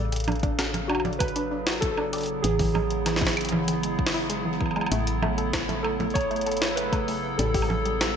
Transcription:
Already playing: A1 C#3 A4
0.04 F#3
0.12 closed hi-hat
0.16 closed hi-hat
0.20 closed hi-hat
0.24 D4, closed hi-hat
0.28 closed hi-hat, low conga, high woodblock
0.32 closed hi-hat
0.36 closed hi-hat
0.39 D4, kick, closed hi-hat
0.43 closed hi-hat
0.59 F#4, snare, closed hi-hat, high woodblock
0.74 closed hi-hat, low conga
0.88 D4 E4 F#4, high woodblock
0.95 B3, high woodblock
1.00 high woodblock
1.05 D5, closed hi-hat, low conga
1.13 closed hi-hat
1.19 B4, kick, closed hi-hat, high woodblock
1.28 closed hi-hat
1.36 D4, closed hi-hat
1.51 D4
1.67 F#4, snare
1.81 A4, kick, closed hi-hat
1.97 D4, high woodblock
2.13 D5, closed hi-hat, open hi-hat
2.16 open hi-hat
2.18 open hi-hat
2.21 open hi-hat
2.23 open hi-hat
2.26 open hi-hat
2.42 A1 E3 G#4, closed hi-hat
2.59 E3, kick, open hi-hat
2.74 G#3 G#4, low conga, high woodblock
2.91 closed hi-hat
3.06 E3, snare, closed hi-hat, high woodblock
3.16 snare
3.21 E4, kick, closed hi-hat, low conga
3.25 snare, closed hi-hat
3.29 closed hi-hat
3.33 closed hi-hat
3.37 closed hi-hat, high woodblock
3.41 closed hi-hat
3.45 closed hi-hat
3.49 E3, closed hi-hat, low conga
3.56 G#4
3.68 E3, closed hi-hat
3.83 G#3, closed hi-hat
3.99 kick
4.07 snare
4.14 E4, open hi-hat
4.30 G#3, closed hi-hat
4.45 E3
4.60 E3, kick, high woodblock
4.66 high woodblock
4.71 high woodblock
4.76 G#3, high woodblock
4.81 high woodblock
4.86 high woodblock
4.92 A1 A3, closed hi-hat
5.07 closed hi-hat
5.22 A3, low conga, high woodblock
5.38 A4, closed hi-hat
5.53 kick, snare, closed hi-hat, high woodblock
5.69 A3, closed hi-hat, low conga
5.83 A3 A4, high woodblock
6.00 A3 A4, closed hi-hat, low conga
6.10 C#5, closed hi-hat
6.15 kick, closed hi-hat, high woodblock
6.21 closed hi-hat
6.31 A3, closed hi-hat
6.36 closed hi-hat
6.41 closed hi-hat
6.46 A4, closed hi-hat
6.52 closed hi-hat
6.57 closed hi-hat
6.62 snare
6.76 A3 B4, closed hi-hat
6.93 A3, kick, closed hi-hat, high woodblock
7.08 A3, open hi-hat
7.38 A1 G3 A4, closed hi-hat
7.54 G4, kick, open hi-hat
7.62 high woodblock
7.69 A4, low conga
7.85 G3, closed hi-hat
8.01 G3, snare, closed hi-hat, high woodblock

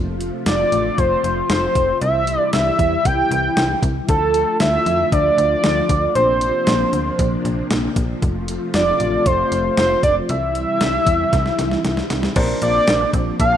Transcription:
Already playing: F1 C3 F3 A3 F4
0.21 closed hi-hat
0.46 F1 D5, snare, closed hi-hat
0.72 A1, closed hi-hat
0.98 F1 C5, kick, closed hi-hat
1.24 F1, closed hi-hat
1.50 F1 C5, snare, closed hi-hat
1.75 F1, kick, closed hi-hat
2.01 C2 E3 G3 E4 E5, closed hi-hat
2.27 closed hi-hat
2.53 C2 E5, snare, closed hi-hat
2.79 E2, kick, closed hi-hat
3.05 C2 G5, kick, closed hi-hat
3.31 C2, closed hi-hat
3.57 C2, snare, closed hi-hat
3.83 C2, kick, closed hi-hat
4.08 D2 D3 F3 A3 F4 A4, kick, closed hi-hat
4.34 closed hi-hat
4.60 D2 E5, snare, closed hi-hat
4.86 F2, closed hi-hat
5.12 D2 D5, kick, closed hi-hat
5.38 D2, closed hi-hat
5.64 D2, snare, closed hi-hat
5.89 D2, kick, closed hi-hat
6.15 A#1 C3 A#3 D4 C5, closed hi-hat
6.41 closed hi-hat
6.67 A#1, snare, closed hi-hat
6.93 D2, closed hi-hat
7.19 A#1, kick, closed hi-hat
7.45 A#1, closed hi-hat
7.71 A#1, snare, closed hi-hat
7.96 A#1, kick, closed hi-hat
8.22 F1 A3 F4, kick, closed hi-hat
8.48 closed hi-hat
8.74 F1 D5, snare, closed hi-hat
9.00 A1, closed hi-hat
9.26 F1 C5, kick, closed hi-hat
9.52 F1, closed hi-hat
9.77 F1 C5, snare, closed hi-hat
10.03 F1 D5, kick, closed hi-hat
10.29 C2 C3 E3 G3 E4 E5, closed hi-hat
10.55 closed hi-hat
10.81 C2, snare, closed hi-hat
11.07 E2, kick, closed hi-hat
11.33 C2, kick, snare, closed hi-hat
11.46 snare
11.59 C2, snare, closed hi-hat
11.71 snare
11.85 C2, snare, closed hi-hat
11.97 snare
12.10 C2, snare, closed hi-hat
12.23 snare
12.36 A#1 C3 F3 A#3 D4 A#4 C5, kick, closed hi-hat, crash
12.62 A#1 F4 D5, closed hi-hat
12.75 F4
12.87 A#1, snare, closed hi-hat
13.01 D4
13.13 A#1 C4, kick, closed hi-hat
13.40 A#1 D4 F5, kick, closed hi-hat
13.53 D4

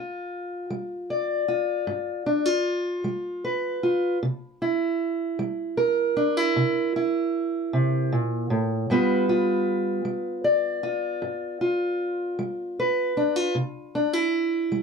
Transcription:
Already playing: G2 F4
0.70 G3
1.10 D5
1.48 F4
1.87 G2
2.26 D4
2.45 F4
3.04 G3
3.44 B4
3.83 F4
4.23 C3
4.62 E4
5.39 G3
5.77 A#4
6.17 D4
6.37 E4
6.56 C3
6.96 E4
7.73 C3
8.12 A#2
8.50 A2
8.90 G2 G3 B3 F4 B4
9.29 F4
10.05 G3
10.44 D5
10.83 F4
11.22 G2
11.61 F4
12.39 G3
12.80 B4
13.17 D4
13.36 F4
13.55 C3
13.95 D4
14.13 E4
14.72 G3

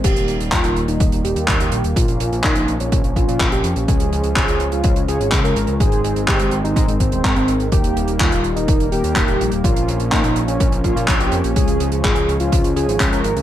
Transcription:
0.04 D#1 D#3 G3 A#3 G4, kick, closed hi-hat, crash
0.16 D#1, closed hi-hat
0.28 D#1, closed hi-hat
0.40 D#1, closed hi-hat
0.52 D#2 F4, kick, clap, closed hi-hat
0.64 D#1, closed hi-hat
0.76 D#1, closed hi-hat
0.88 D#1 D#4, closed hi-hat
1.00 D#1, kick, closed hi-hat
1.12 D#1, closed hi-hat
1.24 D#1 G4, closed hi-hat
1.36 D#2, closed hi-hat
1.48 D#1, kick, clap, closed hi-hat
1.60 D#1 G4, closed hi-hat
1.72 A#1, closed hi-hat
1.84 D#1, closed hi-hat
1.96 A#1 F3 C#4 F4, kick, closed hi-hat
2.08 A#1, closed hi-hat
2.20 A#1, closed hi-hat
2.33 A#1, closed hi-hat
2.44 A#2 D#4, kick, clap, closed hi-hat
2.55 A#1, closed hi-hat
2.68 A#1, closed hi-hat
2.80 A#1 C#4, closed hi-hat
2.92 A#1, kick, closed hi-hat
3.04 A#1, closed hi-hat
3.16 A#1 F4, kick, closed hi-hat
3.28 A#2, closed hi-hat
3.40 A#1, kick, clap, closed hi-hat
3.52 A#1 G4, closed hi-hat
3.64 F2, closed hi-hat
3.76 A#1, closed hi-hat
3.88 C#2 G#3 C#4 F4 G#4 C#5, kick, closed hi-hat
4.00 C#2, closed hi-hat
4.12 C#2, closed hi-hat
4.24 C#2, closed hi-hat
4.36 G#1 G#4, kick, clap, closed hi-hat
4.48 C#2, closed hi-hat
4.60 C#2, closed hi-hat
4.72 C#2 F4, closed hi-hat
4.84 C#2, kick, closed hi-hat
4.96 C#2, closed hi-hat
5.08 C#2 G#3 C#4 F4 G#4 C#5, closed hi-hat
5.20 G#1, closed hi-hat
5.32 C#2, kick, clap, closed hi-hat
5.44 C#2 A#4, closed hi-hat
5.56 G#1, closed hi-hat
5.67 C#2, closed hi-hat
5.80 G#1 D#3 G#3 C4 D#4 G#4 C5, kick, closed hi-hat
5.92 G#1, closed hi-hat
6.04 G#1, closed hi-hat
6.16 G#1, closed hi-hat
6.28 G#2 G4, kick, clap, closed hi-hat
6.39 G#1, closed hi-hat
6.51 G#1, closed hi-hat
6.64 G#1 D#4, closed hi-hat
6.76 G#2, kick, closed hi-hat
6.88 G#1, closed hi-hat
7.00 G#1 C4, kick, closed hi-hat
7.12 D#1 G#3 C4 D#4 C5, closed hi-hat
7.24 G#2 G#3 C4 D#4 A#4, kick, clap, closed hi-hat
7.36 G#1 C4, closed hi-hat
7.48 G#1, closed hi-hat
7.60 G#1, closed hi-hat
7.72 D#1 G3 A#3 D#4 G4 A#4, kick, closed hi-hat
7.84 D#1, closed hi-hat
7.96 D#1, closed hi-hat
8.08 D#1, closed hi-hat
8.20 D#2 F4, kick, clap, closed hi-hat
8.32 D#1, closed hi-hat
8.44 D#1, closed hi-hat
8.56 D#1 D#4, closed hi-hat
8.68 D#1, kick, closed hi-hat
8.80 D#1, closed hi-hat
8.92 D#1 G3 A#3 D#4 G4 A#4, closed hi-hat
9.04 D#2, closed hi-hat
9.16 D#1, kick, clap, closed hi-hat
9.28 D#1 G4, closed hi-hat
9.40 A#1, closed hi-hat
9.52 D#1, closed hi-hat
9.64 A#1 F3 A#3 C#4 F4 C#5, kick, closed hi-hat
9.76 A#1, closed hi-hat
9.88 A#1, closed hi-hat
10.00 A#1, closed hi-hat
10.12 A#2 D#4, kick, clap, closed hi-hat
10.24 A#1, closed hi-hat
10.36 A#1, closed hi-hat
10.48 A#1 C#4, closed hi-hat
10.60 A#1, kick, closed hi-hat
10.72 A#1, closed hi-hat
10.84 A#1 A#3 C#4 F4 C#5, kick, closed hi-hat
10.96 A#2, closed hi-hat
11.08 A#1, kick, clap, closed hi-hat
11.20 A#1 G4, closed hi-hat
11.32 F2, closed hi-hat
11.44 A#1, closed hi-hat
11.56 C#2 F3 G#3 C#4 F4 G#4 C#5, kick, closed hi-hat
11.68 C#2, closed hi-hat
11.80 C#2, closed hi-hat
11.92 C#2, closed hi-hat
12.04 G#1 G#4, kick, clap, closed hi-hat
12.16 C#2, closed hi-hat
12.28 C#2, closed hi-hat
12.40 C#2 F4, closed hi-hat
12.52 C#2, kick, closed hi-hat
12.64 C#2, closed hi-hat
12.76 C#2 G#3 C#4 F4 G#4 C#5, closed hi-hat
12.88 G#1, closed hi-hat
13.00 C#2, kick, clap, closed hi-hat
13.12 C#2 A#4, closed hi-hat
13.24 G#1, closed hi-hat
13.36 C#2, closed hi-hat

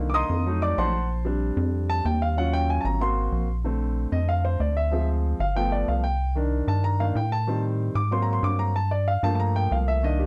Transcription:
Already playing: C2 D3 D#3 A#3
0.10 D6
0.14 D#5 A#5 C6 D#6
0.30 F2
0.46 F#3 A3 D#4
0.62 D5 D6
0.78 A#1 C5 F#5 A5 C6
1.25 G3 C4 D4
1.57 F2
1.90 A5
2.05 D#2 G5
2.22 F5
2.37 F#3 C#4 F4 F#5
2.53 G5
2.70 G#5
2.81 G#1 A5
2.85 A#5
3.01 A#3 C4 F#4 C6
3.32 A#1
3.64 D3 A3 C4
4.12 F2 D#5
4.29 F5
4.45 C5
4.60 D2 D5
4.77 E5
4.92 F3 G#3 C4
5.39 G1 F5
5.56 F3 A3 B3 G5
5.72 D5
5.88 C2 F5
6.04 G5
6.35 D#3 D4 A#4
6.67 G2 A5
6.84 A#5
7.00 D#3 A#3 D4 F5
7.15 A2 G5
7.32 A5
7.47 D#3 G3 C4
7.95 G#2 D6
8.11 F#3 A#3 C4 C6
8.22 A#5
8.33 C6
8.43 G2 D6
8.59 A#5
8.76 A5
8.91 D5
9.08 F5
9.23 G2 F3 A3 A#3 A5
9.35 A5
9.40 A#5
9.56 G5
9.71 C2 F5
9.88 E5
10.03 D#3 A#3 D4 D#5
10.20 G4

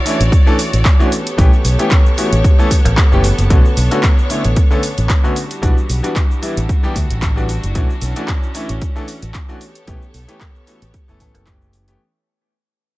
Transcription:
Already playing: E4 F#4 C#5 D5
0.05 E3 A3 C#4 D4 E4, open hi-hat, cabasa
0.20 A1, closed hi-hat, cabasa
0.32 kick, closed hi-hat, cabasa
0.46 E3 A3 C#4 D4 A4, cabasa
0.59 open hi-hat, cabasa
0.73 A1, closed hi-hat, cabasa
0.85 kick, clap, closed hi-hat, cabasa
0.99 E3 A3 C#4 D4 F#4, cabasa
1.12 B3 G4 A4 C#5, open hi-hat, cabasa
1.27 closed hi-hat, cabasa
1.38 B1 E3 A3 B3 C#4 G4, kick, closed hi-hat, cabasa
1.53 cabasa
1.65 B1, open hi-hat, cabasa
1.79 E3 A3 B3 C#4 G4, closed hi-hat, cabasa
1.91 kick, clap, closed hi-hat, cabasa
2.06 cabasa
2.17 E3 A3 B3 C#4 F#4, open hi-hat, cabasa
2.32 A1, closed hi-hat, cabasa
2.44 kick, closed hi-hat, cabasa
2.58 E3 A3 B3 C#4 A4, cabasa
2.71 kick, open hi-hat, cabasa
2.85 A1, closed hi-hat, cowbell, cabasa
2.97 kick, clap, closed hi-hat, cabasa
3.11 F#1 E3 A3 B3 C#4 G4, cabasa
3.24 open hi-hat, cabasa
3.38 F#1, closed hi-hat, cabasa
3.50 B1 D3 A3 B3 C#4 D4 F#4 C#5, kick, closed hi-hat, cabasa
3.65 cabasa
3.77 B1, open hi-hat, cabasa
3.91 D3 A3 B3 C#4 F#4, closed hi-hat, cabasa
4.03 kick, clap, closed hi-hat, cabasa
4.18 cabasa
4.29 D3 A3 B3 C#4 E4, open hi-hat, cabasa
4.44 A1, closed hi-hat, cabasa
4.56 kick, closed hi-hat, cabasa
4.70 D3 A3 B3 C#4 A4, cabasa
4.83 open hi-hat, cabasa
4.98 A1, closed hi-hat, cabasa
5.09 kick, clap, closed hi-hat, cabasa
5.24 D3 A3 B3 C#4 F#4, cabasa
5.36 G3 D4 E4 F#4, open hi-hat, cabasa
5.51 closed hi-hat, cabasa
5.62 B1 E3 G3 B3 D4 F#4, kick, closed hi-hat, cabasa
5.78 cabasa
5.90 B1, open hi-hat, cabasa
6.03 E3 G3 B3 D4 F#4, closed hi-hat, cabasa
6.16 kick, clap, closed hi-hat, cabasa
6.31 cabasa
6.42 E3 G3 B3 D4 E4, open hi-hat, cabasa
6.57 A1, closed hi-hat, cabasa
6.69 kick, closed hi-hat, cabasa
6.83 E3 G3 B3 D4 G4, cabasa
6.96 D2, kick, open hi-hat, cabasa
7.10 A1, closed hi-hat, cabasa
7.22 kick, clap, closed hi-hat, cabasa
7.36 E3 G3 B3 D4 F#4, cabasa
7.49 open hi-hat, cabasa
7.63 F#1, closed hi-hat, cabasa
7.75 B1 E3 A3 C#4 D4 F#4, kick, closed hi-hat, cabasa
7.90 cabasa
8.02 B1, open hi-hat, cabasa
8.16 E3 A3 C#4 D4 F#4, closed hi-hat, cabasa
8.28 kick, clap, closed hi-hat, cabasa
8.43 cabasa
8.55 E3 A3 C#4 D4 E4, open hi-hat, cabasa
8.69 A1, closed hi-hat, cabasa
8.82 kick, closed hi-hat, cabasa
8.96 E3 A3 C#4 D4 A4, cabasa
9.08 open hi-hat, cabasa
9.23 A1, closed hi-hat, cabasa
9.34 kick, clap, closed hi-hat, cabasa
9.49 E3 A3 C#4 D4 F#4, cabasa
9.61 B3 G4 A4 C#5, open hi-hat, cabasa
9.75 closed hi-hat, cabasa
9.87 B1 E3 A3 B3 C#4 G4, kick, closed hi-hat, cabasa
10.02 cabasa
10.14 B1, open hi-hat, cabasa
10.28 E3 A3 B3 C#4 G4, closed hi-hat, cabasa
10.41 kick, clap, closed hi-hat, cowbell, cabasa
10.56 cabasa
10.67 E3 A3 B3 C#4 F#4, open hi-hat, cabasa
10.82 A1, closed hi-hat, cabasa
10.94 kick, closed hi-hat, cabasa
11.08 F#1 E3 A3 B3 C#4 A4, cabasa
11.20 A1 E3 A3 B3 C#4 A4, kick, open hi-hat, cabasa
11.35 F#1, closed hi-hat, cowbell, cabasa
11.47 E3 A3 B3 C#4 G4, kick, clap, closed hi-hat, cabasa
11.62 cabasa
11.73 open hi-hat, cabasa
11.88 E3 A3 B3 C#4 G4, closed hi-hat, cabasa

